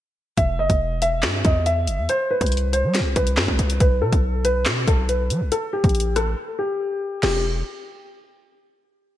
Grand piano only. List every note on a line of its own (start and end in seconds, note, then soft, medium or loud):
0.37 0.57 E5 loud
0.59 0.99 D#5 medium
1.02 1.22 E5 medium
1.45 1.65 D#5 medium
1.66 2.06 E5 medium
2.09 2.29 C5 medium
2.31 2.71 B4 medium
2.73 2.93 C5 medium
3.16 3.77 B4 medium
3.81 4.00 B4 medium
4.02 4.42 A4 medium
4.45 4.64 B4 medium
4.88 5.08 A4 medium
5.09 5.49 B4 medium
5.52 5.72 A4 medium
5.73 6.13 G4 medium
6.16 6.36 A4 medium
6.59 7.19 G4 medium
7.23 7.43 G4 medium